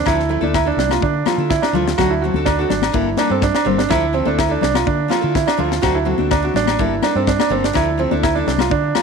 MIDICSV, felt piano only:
0, 0, Header, 1, 2, 480
1, 0, Start_track
1, 0, Key_signature, -1, "minor"
1, 0, Tempo, 481155
1, 55, Time_signature, 4, 2, 24, 8
1, 9002, End_track
2, 0, Start_track
2, 0, Title_t, "Felt piano"
2, 0, Program_c, 0, 0
2, 68, Note_on_c, 0, 64, 86
2, 289, Note_off_c, 0, 64, 0
2, 304, Note_on_c, 0, 64, 63
2, 418, Note_off_c, 0, 64, 0
2, 432, Note_on_c, 0, 62, 57
2, 535, Note_off_c, 0, 62, 0
2, 549, Note_on_c, 0, 64, 73
2, 660, Note_off_c, 0, 64, 0
2, 671, Note_on_c, 0, 62, 62
2, 770, Note_off_c, 0, 62, 0
2, 785, Note_on_c, 0, 62, 67
2, 898, Note_off_c, 0, 62, 0
2, 913, Note_on_c, 0, 65, 62
2, 1015, Note_off_c, 0, 65, 0
2, 1027, Note_on_c, 0, 62, 64
2, 1248, Note_off_c, 0, 62, 0
2, 1264, Note_on_c, 0, 65, 63
2, 1486, Note_off_c, 0, 65, 0
2, 1496, Note_on_c, 0, 64, 74
2, 1613, Note_off_c, 0, 64, 0
2, 1618, Note_on_c, 0, 62, 70
2, 1727, Note_off_c, 0, 62, 0
2, 1741, Note_on_c, 0, 65, 68
2, 1964, Note_off_c, 0, 65, 0
2, 1973, Note_on_c, 0, 66, 88
2, 2092, Note_off_c, 0, 66, 0
2, 2098, Note_on_c, 0, 64, 67
2, 2207, Note_off_c, 0, 64, 0
2, 2212, Note_on_c, 0, 66, 62
2, 2440, Note_off_c, 0, 66, 0
2, 2448, Note_on_c, 0, 62, 76
2, 2569, Note_off_c, 0, 62, 0
2, 2584, Note_on_c, 0, 66, 68
2, 2689, Note_off_c, 0, 66, 0
2, 2691, Note_on_c, 0, 62, 63
2, 2919, Note_off_c, 0, 62, 0
2, 2935, Note_on_c, 0, 64, 68
2, 3161, Note_off_c, 0, 64, 0
2, 3174, Note_on_c, 0, 62, 68
2, 3292, Note_off_c, 0, 62, 0
2, 3303, Note_on_c, 0, 60, 71
2, 3409, Note_off_c, 0, 60, 0
2, 3423, Note_on_c, 0, 62, 77
2, 3527, Note_off_c, 0, 62, 0
2, 3542, Note_on_c, 0, 62, 73
2, 3649, Note_off_c, 0, 62, 0
2, 3653, Note_on_c, 0, 60, 68
2, 3771, Note_off_c, 0, 60, 0
2, 3775, Note_on_c, 0, 62, 67
2, 3885, Note_off_c, 0, 62, 0
2, 3894, Note_on_c, 0, 64, 94
2, 4121, Note_off_c, 0, 64, 0
2, 4132, Note_on_c, 0, 60, 68
2, 4251, Note_off_c, 0, 60, 0
2, 4257, Note_on_c, 0, 62, 63
2, 4366, Note_off_c, 0, 62, 0
2, 4373, Note_on_c, 0, 64, 66
2, 4492, Note_off_c, 0, 64, 0
2, 4501, Note_on_c, 0, 62, 62
2, 4596, Note_off_c, 0, 62, 0
2, 4611, Note_on_c, 0, 62, 73
2, 4731, Note_off_c, 0, 62, 0
2, 4741, Note_on_c, 0, 65, 67
2, 4848, Note_off_c, 0, 65, 0
2, 4856, Note_on_c, 0, 62, 71
2, 5082, Note_off_c, 0, 62, 0
2, 5091, Note_on_c, 0, 65, 78
2, 5320, Note_off_c, 0, 65, 0
2, 5339, Note_on_c, 0, 64, 75
2, 5455, Note_off_c, 0, 64, 0
2, 5460, Note_on_c, 0, 62, 75
2, 5568, Note_off_c, 0, 62, 0
2, 5579, Note_on_c, 0, 65, 69
2, 5804, Note_off_c, 0, 65, 0
2, 5808, Note_on_c, 0, 66, 81
2, 5929, Note_off_c, 0, 66, 0
2, 5938, Note_on_c, 0, 64, 62
2, 6047, Note_off_c, 0, 64, 0
2, 6048, Note_on_c, 0, 66, 60
2, 6279, Note_off_c, 0, 66, 0
2, 6296, Note_on_c, 0, 62, 74
2, 6414, Note_off_c, 0, 62, 0
2, 6427, Note_on_c, 0, 66, 65
2, 6532, Note_off_c, 0, 66, 0
2, 6544, Note_on_c, 0, 62, 76
2, 6768, Note_off_c, 0, 62, 0
2, 6783, Note_on_c, 0, 64, 66
2, 7007, Note_off_c, 0, 64, 0
2, 7018, Note_on_c, 0, 62, 67
2, 7136, Note_off_c, 0, 62, 0
2, 7144, Note_on_c, 0, 60, 70
2, 7251, Note_off_c, 0, 60, 0
2, 7261, Note_on_c, 0, 62, 76
2, 7372, Note_off_c, 0, 62, 0
2, 7387, Note_on_c, 0, 62, 68
2, 7493, Note_off_c, 0, 62, 0
2, 7498, Note_on_c, 0, 60, 68
2, 7616, Note_off_c, 0, 60, 0
2, 7629, Note_on_c, 0, 62, 63
2, 7734, Note_off_c, 0, 62, 0
2, 7740, Note_on_c, 0, 64, 80
2, 7967, Note_off_c, 0, 64, 0
2, 7977, Note_on_c, 0, 60, 66
2, 8092, Note_on_c, 0, 62, 58
2, 8096, Note_off_c, 0, 60, 0
2, 8206, Note_off_c, 0, 62, 0
2, 8214, Note_on_c, 0, 64, 72
2, 8332, Note_on_c, 0, 62, 62
2, 8334, Note_off_c, 0, 64, 0
2, 8438, Note_off_c, 0, 62, 0
2, 8453, Note_on_c, 0, 62, 65
2, 8574, Note_off_c, 0, 62, 0
2, 8580, Note_on_c, 0, 65, 66
2, 8690, Note_off_c, 0, 65, 0
2, 8692, Note_on_c, 0, 62, 75
2, 8923, Note_off_c, 0, 62, 0
2, 8930, Note_on_c, 0, 65, 65
2, 9002, Note_off_c, 0, 65, 0
2, 9002, End_track
0, 0, End_of_file